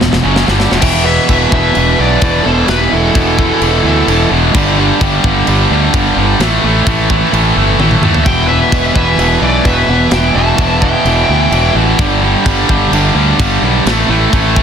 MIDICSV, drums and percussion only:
0, 0, Header, 1, 2, 480
1, 0, Start_track
1, 0, Key_signature, 1, "minor"
1, 0, Tempo, 465839
1, 847, Time_signature, 4, 2, 24, 8
1, 15073, End_track
2, 0, Start_track
2, 0, Title_t, "Drums"
2, 12, Note_on_c, 9, 38, 82
2, 115, Note_off_c, 9, 38, 0
2, 132, Note_on_c, 9, 38, 98
2, 235, Note_off_c, 9, 38, 0
2, 372, Note_on_c, 9, 38, 101
2, 475, Note_off_c, 9, 38, 0
2, 495, Note_on_c, 9, 38, 98
2, 598, Note_off_c, 9, 38, 0
2, 617, Note_on_c, 9, 38, 118
2, 720, Note_off_c, 9, 38, 0
2, 737, Note_on_c, 9, 38, 98
2, 840, Note_off_c, 9, 38, 0
2, 842, Note_on_c, 9, 49, 127
2, 842, Note_on_c, 9, 57, 69
2, 848, Note_on_c, 9, 36, 113
2, 945, Note_off_c, 9, 49, 0
2, 945, Note_off_c, 9, 57, 0
2, 951, Note_off_c, 9, 36, 0
2, 1327, Note_on_c, 9, 57, 71
2, 1328, Note_on_c, 9, 36, 86
2, 1430, Note_off_c, 9, 57, 0
2, 1431, Note_off_c, 9, 36, 0
2, 1568, Note_on_c, 9, 36, 94
2, 1671, Note_off_c, 9, 36, 0
2, 1802, Note_on_c, 9, 57, 61
2, 1905, Note_off_c, 9, 57, 0
2, 2282, Note_on_c, 9, 57, 62
2, 2287, Note_on_c, 9, 36, 89
2, 2385, Note_off_c, 9, 57, 0
2, 2390, Note_off_c, 9, 36, 0
2, 2763, Note_on_c, 9, 57, 60
2, 2770, Note_on_c, 9, 38, 115
2, 2866, Note_off_c, 9, 57, 0
2, 2873, Note_off_c, 9, 38, 0
2, 3247, Note_on_c, 9, 57, 66
2, 3248, Note_on_c, 9, 36, 92
2, 3350, Note_off_c, 9, 57, 0
2, 3351, Note_off_c, 9, 36, 0
2, 3489, Note_on_c, 9, 36, 94
2, 3592, Note_off_c, 9, 36, 0
2, 3725, Note_on_c, 9, 57, 64
2, 3828, Note_off_c, 9, 57, 0
2, 4206, Note_on_c, 9, 57, 67
2, 4309, Note_off_c, 9, 57, 0
2, 4685, Note_on_c, 9, 36, 117
2, 4686, Note_on_c, 9, 57, 70
2, 4788, Note_off_c, 9, 36, 0
2, 4789, Note_off_c, 9, 57, 0
2, 5163, Note_on_c, 9, 36, 88
2, 5166, Note_on_c, 9, 57, 72
2, 5266, Note_off_c, 9, 36, 0
2, 5269, Note_off_c, 9, 57, 0
2, 5401, Note_on_c, 9, 36, 91
2, 5504, Note_off_c, 9, 36, 0
2, 5637, Note_on_c, 9, 57, 65
2, 5740, Note_off_c, 9, 57, 0
2, 6119, Note_on_c, 9, 36, 86
2, 6121, Note_on_c, 9, 57, 62
2, 6222, Note_off_c, 9, 36, 0
2, 6224, Note_off_c, 9, 57, 0
2, 6597, Note_on_c, 9, 57, 68
2, 6604, Note_on_c, 9, 38, 121
2, 6700, Note_off_c, 9, 57, 0
2, 6707, Note_off_c, 9, 38, 0
2, 7076, Note_on_c, 9, 36, 101
2, 7077, Note_on_c, 9, 57, 64
2, 7179, Note_off_c, 9, 36, 0
2, 7180, Note_off_c, 9, 57, 0
2, 7315, Note_on_c, 9, 36, 96
2, 7418, Note_off_c, 9, 36, 0
2, 7558, Note_on_c, 9, 57, 67
2, 7661, Note_off_c, 9, 57, 0
2, 8033, Note_on_c, 9, 48, 70
2, 8136, Note_off_c, 9, 48, 0
2, 8151, Note_on_c, 9, 47, 68
2, 8254, Note_off_c, 9, 47, 0
2, 8273, Note_on_c, 9, 45, 97
2, 8376, Note_off_c, 9, 45, 0
2, 8392, Note_on_c, 9, 43, 91
2, 8495, Note_off_c, 9, 43, 0
2, 8511, Note_on_c, 9, 36, 114
2, 8513, Note_on_c, 9, 57, 69
2, 8614, Note_off_c, 9, 36, 0
2, 8616, Note_off_c, 9, 57, 0
2, 8986, Note_on_c, 9, 57, 74
2, 8988, Note_on_c, 9, 36, 95
2, 9089, Note_off_c, 9, 57, 0
2, 9091, Note_off_c, 9, 36, 0
2, 9227, Note_on_c, 9, 36, 84
2, 9330, Note_off_c, 9, 36, 0
2, 9468, Note_on_c, 9, 57, 66
2, 9571, Note_off_c, 9, 57, 0
2, 9945, Note_on_c, 9, 57, 68
2, 9946, Note_on_c, 9, 36, 88
2, 10048, Note_off_c, 9, 57, 0
2, 10049, Note_off_c, 9, 36, 0
2, 10419, Note_on_c, 9, 57, 60
2, 10426, Note_on_c, 9, 38, 119
2, 10522, Note_off_c, 9, 57, 0
2, 10529, Note_off_c, 9, 38, 0
2, 10903, Note_on_c, 9, 57, 68
2, 10906, Note_on_c, 9, 36, 89
2, 11006, Note_off_c, 9, 57, 0
2, 11009, Note_off_c, 9, 36, 0
2, 11148, Note_on_c, 9, 36, 92
2, 11251, Note_off_c, 9, 36, 0
2, 11391, Note_on_c, 9, 57, 62
2, 11494, Note_off_c, 9, 57, 0
2, 11874, Note_on_c, 9, 57, 61
2, 11977, Note_off_c, 9, 57, 0
2, 12354, Note_on_c, 9, 36, 120
2, 12354, Note_on_c, 9, 57, 66
2, 12457, Note_off_c, 9, 36, 0
2, 12457, Note_off_c, 9, 57, 0
2, 12837, Note_on_c, 9, 57, 76
2, 12838, Note_on_c, 9, 36, 91
2, 12940, Note_off_c, 9, 57, 0
2, 12941, Note_off_c, 9, 36, 0
2, 13078, Note_on_c, 9, 36, 95
2, 13181, Note_off_c, 9, 36, 0
2, 13322, Note_on_c, 9, 57, 72
2, 13425, Note_off_c, 9, 57, 0
2, 13802, Note_on_c, 9, 36, 86
2, 13807, Note_on_c, 9, 57, 69
2, 13905, Note_off_c, 9, 36, 0
2, 13910, Note_off_c, 9, 57, 0
2, 14286, Note_on_c, 9, 57, 69
2, 14293, Note_on_c, 9, 38, 110
2, 14389, Note_off_c, 9, 57, 0
2, 14397, Note_off_c, 9, 38, 0
2, 14765, Note_on_c, 9, 36, 97
2, 14766, Note_on_c, 9, 57, 68
2, 14868, Note_off_c, 9, 36, 0
2, 14869, Note_off_c, 9, 57, 0
2, 15007, Note_on_c, 9, 36, 95
2, 15073, Note_off_c, 9, 36, 0
2, 15073, End_track
0, 0, End_of_file